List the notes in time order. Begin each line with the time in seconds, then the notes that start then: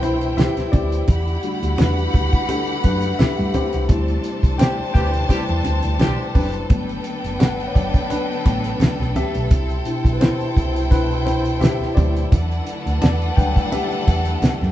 Already playing: C2 B2 E3 G3 D4 E4 B4 C5 G5
0.02 E4 C5, closed hi-hat, muted conga
0.21 closed hi-hat
0.37 G4 E5, snare, closed hi-hat, high conga
0.57 snare, closed hi-hat, high conga
0.72 D2 G4 D5, kick, closed hi-hat, high conga
0.92 closed hi-hat
1.07 E2 D3 E3 A3 G4 F#5 B5, kick, closed hi-hat, muted conga
1.28 closed hi-hat
1.43 G3 A3 D4 F#4, closed hi-hat
1.63 D2, closed hi-hat
1.78 E2 D4 B4, snare, closed hi-hat, high conga
1.98 closed hi-hat
2.14 D2, kick, closed hi-hat, muted conga
2.33 kick, closed hi-hat
2.49 D4 A4, closed hi-hat, muted conga
2.67 closed hi-hat
2.84 F#2 D4 B4, kick, closed hi-hat, muted conga
3.02 closed hi-hat
3.19 G4 E5, muted fingered electric bass stroke, snare, closed hi-hat, high conga
3.37 G2, closed hi-hat, high conga
3.54 G4 C5, closed hi-hat, high conga
3.73 C2, closed hi-hat
3.88 D2 C3 G3 C4 D4 E4 A4 C5 A5, kick, closed hi-hat, muted conga
4.08 closed hi-hat
4.24 closed hi-hat
4.43 C2, kick, closed hi-hat
4.58 D3 C4 G4 C5 G5, snare, closed hi-hat, high conga
4.79 muted fingered electric bass stroke
4.94 D2 D3 C4 G4 B4 G5, kick, closed hi-hat
5.14 closed hi-hat
5.29 D3 G3 C4 E4 G4, kick, closed hi-hat, muted conga
5.48 E2, closed hi-hat
5.64 D2, closed hi-hat, muted conga
5.82 D2, closed hi-hat
5.99 B1 D3 C4 G4, snare, closed hi-hat, high conga
6.34 F#1 D4 B4, kick, open hi-hat, high conga
6.54 closed hi-hat
6.69 G1 D3 F#3 A3 B3 D4 B4 G5, kick, closed hi-hat, muted conga
6.89 closed hi-hat
7.04 closed hi-hat
7.24 F#1, closed hi-hat
7.39 G1 B4 F#5, snare, closed hi-hat, high conga
7.60 closed hi-hat
7.68 C#5
7.74 F#1 F#3 D5, kick, closed hi-hat
7.94 kick, closed hi-hat
8.10 D4 B4, closed hi-hat, muted conga
8.46 A1 F#3 A3 B3, kick, closed hi-hat, muted conga
8.64 closed hi-hat
8.80 muted fingered electric bass stroke, snare, closed hi-hat, high conga
9.00 B1, snare, high conga
9.16 G4 E5, closed hi-hat, high conga
9.35 B1, closed hi-hat
9.51 C2 B2 E4 C5 G5, kick, closed hi-hat, muted conga
9.70 closed hi-hat
9.85 B2 D4 E4, closed hi-hat
10.05 B1, kick, closed hi-hat
10.13 B4
10.21 E4 C5, snare, closed hi-hat, high conga
10.40 muted fingered electric bass stroke, closed hi-hat
10.57 C2, kick, closed hi-hat, muted conga
10.76 closed hi-hat
10.91 B2 D4 E4 B4, kick, closed hi-hat, muted conga
11.11 closed hi-hat
11.25 E4 C5, closed hi-hat, muted conga
11.45 closed hi-hat
11.60 G4 E5, snare, closed hi-hat, high conga
11.81 snare, high conga
11.95 D2 F#3 D5, kick, closed hi-hat, high conga
12.16 closed hi-hat
12.32 E2 D3 A3 D4 A4 B4 F#5, kick, closed hi-hat, muted conga
12.51 closed hi-hat
12.67 closed hi-hat
12.86 D2, closed hi-hat
13.01 E2 D5 A5, snare, closed hi-hat, high conga
13.22 closed hi-hat
13.36 D2 F#3 G3 A3 D4 B4 G5, kick, closed hi-hat
13.56 kick, closed hi-hat
13.72 G4 E5, closed hi-hat, muted conga
13.91 closed hi-hat
14.07 E2, kick, closed hi-hat, muted conga
14.25 closed hi-hat
14.42 muted fingered electric bass stroke, snare, closed hi-hat, high conga
14.61 F#2, snare, high conga